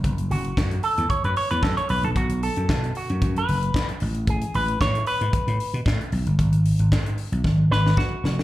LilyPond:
<<
  \new Staff \with { instrumentName = "Clean electric guitar" } { \time 4/4 \key a \major \tempo 4 = 114 r8 fis'4 a'8 cis''16 b'16 cis''16 b'16 a'16 cis''16 b'16 a'16 | fis'8 a'4 fis'8. b'4 r8. | gis'8 b'8 cis''8 b'4. r4 | r2 r8 b'8 fis'4 | }
  \new Staff \with { instrumentName = "Slap bass" } { \clef bass \time 4/4 \key a \major fis,,8 fis,,8 fis,8 r16 e,16 r16 fis,16 r16 e,16 fis,16 r16 b,,16 ais,,16 | b,,8. fis,16 b,8 r16 fis,16 fis,8 fis,,8 r8 a,,8~ | a,,8 a,,8 a,8 r16 gis,16 r16 a,16 r16 b,16 a,16 r16 b,,16 g,,16 | gis,,8. gis,,16 gis,8 r16 b,,16 gis,,8 gis,,8 r8 eis,,8 | }
  \new DrumStaff \with { instrumentName = "Drums" } \drummode { \time 4/4 <hh bd>16 hh16 hho16 hh16 <hc bd sn>16 hh16 hho16 hh16 <hh bd>16 hh16 hho16 hh16 <hc bd sn>16 hh16 hho16 hh16 | <hh bd>16 hh16 hho16 hh16 <hc bd sn>16 hh16 hho16 hh16 <hh bd>16 hh16 hho16 hh16 <hc bd sn>16 hh16 hho16 hh16 | <hh bd>16 hh16 hho16 hh16 <hc bd sn>16 hh16 hho16 hh16 <hh bd>16 hh16 hho16 hh16 <hc bd sn>16 hh16 hho16 hh16 | <hh bd>16 hh16 hho16 hh16 <hc bd sn>16 hh16 hho16 hh16 <bd sn>8 sn16 sn16 <bd sn>8 sn16 sn16 | }
>>